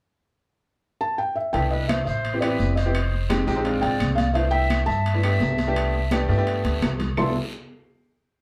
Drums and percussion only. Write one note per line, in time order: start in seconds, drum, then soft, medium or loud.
1.54 high conga soft
1.54 high timbale medium
1.54 long guiro medium
1.72 high conga soft
1.89 high conga medium
1.89 high timbale medium
1.89 short guiro medium
1.89 claves medium
2.07 high conga soft
2.07 short guiro medium
2.24 high conga soft
2.24 high timbale medium
2.24 long guiro medium
2.42 high conga soft
2.42 high timbale medium
2.42 claves medium
2.60 high conga medium
2.60 short guiro medium
2.77 high timbale medium
2.77 short guiro medium
2.95 high conga soft
2.95 high timbale medium
2.95 long guiro medium
2.95 claves medium
3.13 high conga soft
3.30 high conga medium
3.30 high timbale medium
3.30 short guiro medium
3.30 claves medium
3.47 short guiro medium
3.65 high conga soft
3.65 high timbale medium
3.65 long guiro medium
3.83 high conga soft
3.83 high timbale medium
4.00 high conga medium
4.00 high timbale medium
4.00 short guiro medium
4.00 claves medium
4.18 high conga medium
4.18 high timbale medium
4.18 short guiro medium
4.35 high timbale medium
4.35 long guiro medium
4.53 high conga soft
4.70 high conga medium
4.70 high timbale medium
4.70 short guiro medium
4.70 claves medium
4.88 high conga soft
4.88 short guiro medium
5.05 high conga soft
5.05 high timbale medium
5.05 long guiro medium
5.23 high conga soft
5.23 high timbale medium
5.23 claves medium
5.40 high conga medium
5.40 low timbale medium
5.40 short guiro medium
5.58 high conga medium
5.58 high timbale medium
5.58 short guiro medium
5.76 high conga soft
5.76 high timbale medium
5.76 long guiro medium
5.76 claves medium
5.94 high conga soft
6.11 high conga medium
6.11 high timbale medium
6.11 short guiro medium
6.11 claves medium
6.29 high conga soft
6.29 short guiro medium
6.47 high conga soft
6.47 high timbale medium
6.47 long guiro medium
6.65 high conga medium
6.65 high timbale medium
6.82 high conga medium
6.82 high timbale medium
6.82 low timbale medium
6.82 short guiro medium
6.82 claves medium
7.00 low conga medium
7.00 high timbale medium
7.00 short guiro medium
7.17 low conga medium
7.17 low timbale medium
7.17 long guiro medium
7.17 claves medium